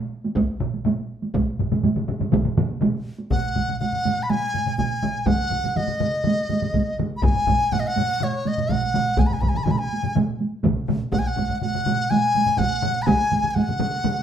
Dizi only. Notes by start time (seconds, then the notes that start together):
3.31 F#5
3.80 F#5
4.23 B5
4.30 G#5
4.78 G#5
5.26 F#5
5.77 D#5
7.17 B5
7.23 G#5
7.72 F#5
7.80 D#5
7.87 F#5
8.23 C#5
8.47 D#5
8.71 F#5
9.19 G#5
9.26 B5
9.33 G#5
9.41 B5
9.49 G#5
9.57 B5
9.63 G#5
9.71 B5
9.79 G#5
11.12 F#5
11.19 G#5
11.27 F#5
11.62 F#5
12.10 G#5
12.58 F#5
13.02 B5
13.07 G#5
13.50 G#5
13.54 F#5